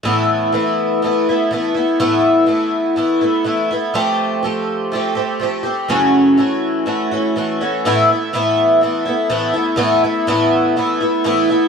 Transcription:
X:1
M:4/4
L:1/8
Q:1/4=123
K:A
V:1 name="Twelve-string acoustic guitar"
[A,,E,A,B,E]2 [E,A,B,E]2 [E,A,B,E] [A,B,E] [E,A,B,E] [A,B,E] | [A,,E,A,B,E]2 [E,A,B,E]2 [E,A,B,E] [A,B,E] [E,A,B,E] [A,B,E] | [=F,A,=C=G]2 [F,A,CG]2 [F,A,CG] [A,CG] [F,A,CG] [A,CG] | [F,,C,E,A,CF]2 [E,A,CF]2 [E,A,CF] [E,A,CF] [E,A,CF] [E,A,CF] |
[A,,E,A,B,E] [A,B,E] [A,,E,A,B,E]2 [E,A,B,E] [A,B,E] [A,,E,A,B,E] [A,B,E] | [A,,E,A,B,E] [A,B,E] [A,,E,A,B,E]2 [E,A,B,E] [A,B,E] [A,,E,A,B,E] [A,B,E] |]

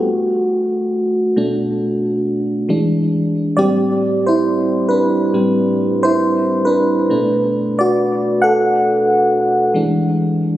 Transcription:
X:1
M:4/4
L:1/16
Q:"Swing 16ths" 1/4=68
K:Ador
V:1 name="FM electric piano"
[A,F]6 z8 z2 | [Gd]3 [Ec]3 [DB]4- [DB] [Ec]3 [DB]2- | [DB]3 [Fd]3 [Af]6 z4 |]
V:2 name="FM electric piano" clef=bass
z6 [B,,A,D]6 [E,^G,D]2 z2 | [A,,G,C]6 z2 [A,,G,C]2 z6 | [B,,A,D]12 [E,^G,D]2 z2 |]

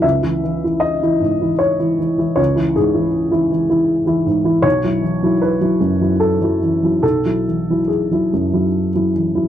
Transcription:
X:1
M:3/4
L:1/16
Q:1/4=76
K:C#m
V:1 name="Upright piano"
e4 d4 c4 | c2 G8 z2 | c4 B4 A4 | A4 G6 z2 |]
V:2 name="Upright piano" clef=bass
C,, [E,E] E, [E,E]2 [E,E] G,, [E,E]2 [E,E] E, [E,E] | C,, [E,E] G,, [E,E]2 [E,E] E, [E,E]2 [E,E] G,, [E,E] | B,,, [F,E] E, [F,E]2 [F,E] F,, [F,E]2 [F,E] E, [F,E] | B,,, [F,E] E, [F,E]2 [F,E] F,, [F,E]2 [F,E] E, [F,E] |]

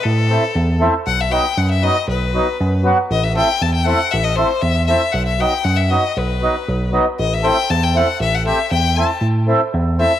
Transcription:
X:1
M:2/4
L:1/16
Q:1/4=118
K:none
V:1 name="Violin"
A6 z2 | ^f e g2 f e ^d2 | B6 z2 | ^d e g2 a g ^f2 |
e ^d c2 e2 e2 | ^f e g2 f e ^d2 | B6 z2 | ^d e g2 a g ^f2 |
e ^f e2 g2 a2 | z6 e2 |]
V:2 name="Accordion"
z2 [A,CE] z3 [A,CE] z | z2 [^F,B,^D] z3 [F,B,D] z | z2 [^F,B,^D] z3 [F,B,^F] z | z2 [A,CE] z3 [A,CE] z |
z2 [A,CE] z3 [A,CE] z | z2 [^F,B,^D] z3 [F,B,D] z | z2 [^F,B,^D] z3 [F,B,D] z | z2 [A,CE] z3 [A,CE] z |
z2 [A,CG] z3 [A,CE] z | z2 [A,CE] z3 [A,CE] z |]
V:3 name="Tine electric piano" clef=bass
A,,4 E,,4 | B,,,4 ^F,,4 | B,,,4 ^F,,4 | A,,,4 E,,4 |
A,,,4 E,,4 | B,,,4 ^F,,4 | B,,,4 B,,,4 | A,,,4 E,,4 |
A,,,4 E,,4 | A,,4 E,,4 |]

